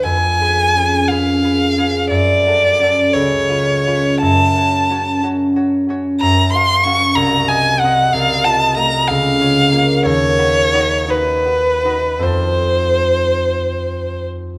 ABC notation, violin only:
X:1
M:6/8
L:1/8
Q:3/8=59
K:F#m
V:1 name="Violin"
g3 ^e3 | d3 c3 | a3 z3 | [K:Fphr] b c' d' b a g |
f =a b f3 | d3 =B3 | c4- c z |]